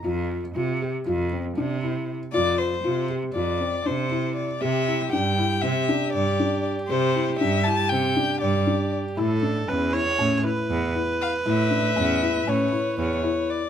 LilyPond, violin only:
\new Staff \with { instrumentName = "Violin" } { \time 9/8 \key f \lydian \tempo 4. = 79 r1 r8 | d''8 c''4 r8 d''4 c''4 d''8 | \key c \major e''4 g''4 e''4 d''4 r8 | c''4 e''8 a''8 g''4 d''4 r8 |
r1 f''8 | e''2 cis''4 cis''4 d''8 | }